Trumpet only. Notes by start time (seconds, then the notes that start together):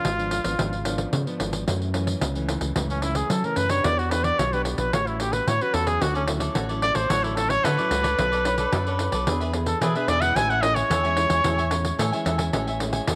Already playing: F4
2.90 C#4
3.03 E4
3.16 G#4
3.31 A4
3.45 A#4
3.57 B4
3.70 C#5
3.85 D5
3.99 F#4
4.11 B4
4.24 D5
4.39 C#5
4.53 B4
4.64 G4
4.78 B4
4.93 C#5
5.08 E4
5.20 G4
5.33 B4
5.48 C#5
5.62 B4
5.74 A4
5.87 G#4
6.02 F#4
6.16 C#4
6.83 D5
6.96 C5
7.10 C#5
7.23 E4
7.36 A4
7.50 C#5
7.64 B4
9.67 A4
9.81 G#4
9.96 B4
10.09 D5
10.21 F#5
10.36 G#5
10.50 F#5
10.62 D#5
10.75 C#5